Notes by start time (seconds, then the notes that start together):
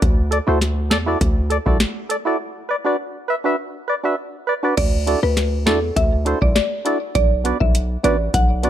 0.02 D2, kick, closed hi-hat
0.31 A4 D5, closed hi-hat
0.47 D2 E4 F#4 A4 C5
0.61 snare, closed hi-hat
0.90 E2 A4 D5, snare, closed hi-hat
1.06 E4 F#4 A4 D5
1.21 D2, kick, closed hi-hat
1.50 A4 D5, closed hi-hat
1.66 C2 E4 F#4 A4 D5, kick
1.80 snare, closed hi-hat
2.09 A4 D5, closed hi-hat
2.25 E4 F#4 A4 D5
2.69 B4 D5
2.85 D4 F#4 B4 D5
3.28 B4 E5
3.44 D4 F#4 B4 E5
3.88 B4 D5
4.04 D4 F#4 B4 E5
4.47 B4 D5
4.63 D4 F#4 B4 D5
4.77 D2 D5, kick, closed hi-hat, crash
5.07 D4 E4 F#4 A4 D5, closed hi-hat
5.23 D2 B4
5.37 snare, closed hi-hat
5.66 E2 D4 E4 F#4 A4 D5, snare, closed hi-hat
5.96 D2 E5, kick, closed hi-hat
6.25 D4 E4 F#4 A4 C5, closed hi-hat
6.42 C2 D5, kick
6.55 D5, snare, closed hi-hat
6.85 D4 E4 F#4 A4 D5, closed hi-hat
7.15 B1 D5, kick, closed hi-hat
7.44 B3 D4 F#4 B4 D5, closed hi-hat
7.60 B1 E5, kick
7.75 closed hi-hat
8.03 A1 B3 D4 F#4 B4 D5, closed hi-hat
8.34 B1 F#5, kick, closed hi-hat
8.63 B3 D4 F#4 B4 D5, closed hi-hat